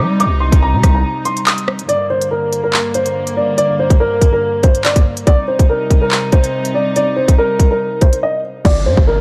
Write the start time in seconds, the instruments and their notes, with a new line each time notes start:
Already playing: string section C3 G3 D#4
0.00 808-style bass G3, grand piano D6
0.20 grand piano D6, closed hi-hat
0.26 808-style bass C2
0.40 grand piano C6
0.52 808-style bass C2, kick, closed hi-hat
0.62 grand piano A#5
0.73 808-style bass C3
0.83 808-style bass C2, kick, cross-stick, closed hi-hat
0.95 grand piano A#5
1.25 grand piano C6, closed hi-hat
1.37 closed hi-hat
1.47 grand piano D#6, clap, closed hi-hat
1.58 closed hi-hat
1.68 cross-stick
1.79 closed hi-hat
1.89 string section G2 D3 A#3, grand piano D5, closed hi-hat
2.10 grand piano C5
2.22 closed hi-hat
2.31 grand piano A#4
2.53 closed hi-hat
2.64 grand piano A#4
2.73 clap
2.94 grand piano C5, closed hi-hat
3.06 closed hi-hat
3.27 closed hi-hat
3.37 grand piano D5
3.58 grand piano D5, closed hi-hat
3.80 grand piano C5
3.90 kick, closed hi-hat
4.00 grand piano A#4
4.21 kick, closed hi-hat
4.33 grand piano A#4
4.63 grand piano C5, kick, closed hi-hat
4.75 closed hi-hat
4.85 grand piano D5, clap, closed hi-hat
4.96 kick, closed hi-hat
5.17 closed hi-hat
5.27 string section C3 G3 D#4, grand piano D5, kick, closed hi-hat
5.48 grand piano C5
5.59 kick, closed hi-hat
5.70 grand piano A#4
5.90 kick, closed hi-hat
6.02 grand piano A#4
6.11 clap
6.32 grand piano C5, kick, closed hi-hat
6.44 closed hi-hat
6.65 closed hi-hat
6.75 grand piano D5
6.96 grand piano D5, closed hi-hat
7.16 grand piano C5
7.28 kick, closed hi-hat
7.38 grand piano A#4
7.59 kick, closed hi-hat
7.71 grand piano A#4
8.01 grand piano C5, kick, closed hi-hat
8.13 closed hi-hat
8.23 grand piano D#5
8.65 808-style bass G1, grand piano D5, kick, crash, downlifter
8.86 808-style bass G2, grand piano C5
8.97 808-style bass G1, kick
9.07 grand piano A#4